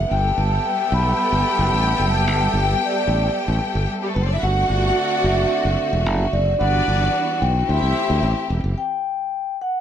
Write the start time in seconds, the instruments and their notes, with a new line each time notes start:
Already playing: string section B3, vibraphone E5
0.10 fingered electric bass G1, string section G3 G4 A4 G5, horn section B3 A4 E5, vibraphone G5
0.38 fingered electric bass G1, vibraphone A5
0.66 vibraphone G5
0.92 fingered electric bass B1, vibraphone B5
1.20 vibraphone B5
1.32 fingered electric bass G1
1.59 fingered electric bass F#1
1.73 fingered electric bass A1
2.00 fingered electric bass F#1, vibraphone A5
2.27 fingered electric bass G1
2.54 fingered electric bass G1, vibraphone G5
2.85 vibraphone D5
3.08 fingered electric bass A1
3.48 fingered electric bass A1
3.75 fingered electric bass G1
4.02 string section G3 G4
4.08 string section A3 A4
4.15 fingered electric bass F#1, string section B3 B4
4.22 string section C4 C5
4.27 string section D4 D5
4.35 string section E4 E5
4.42 fingered electric bass G1, string section D3 C4 F#4 F#5, horn section A3 F#4 D5, vibraphone F#5
4.70 fingered electric bass G1
5.24 fingered electric bass F#1, vibraphone E5
5.65 fingered electric bass F#1
5.93 fingered electric bass E1
6.06 fingered electric bass F#1
6.33 fingered electric bass F#1, vibraphone D5
6.59 fingered electric bass G1, string section E3 B3 D4 F#4 D5, horn section G3 F#4 B4, vibraphone F#5
6.88 fingered electric bass G1
7.40 fingered electric bass B1, vibraphone G5
7.67 fingered electric bass D2, horn section A3 G4 C5, string section C4 E4 G4 E5
7.82 fingered electric bass C2
8.10 fingered electric bass D2
8.23 fingered electric bass A1
8.50 fingered electric bass E1
8.64 fingered electric bass F#1
8.78 vibraphone G5
9.62 vibraphone F#5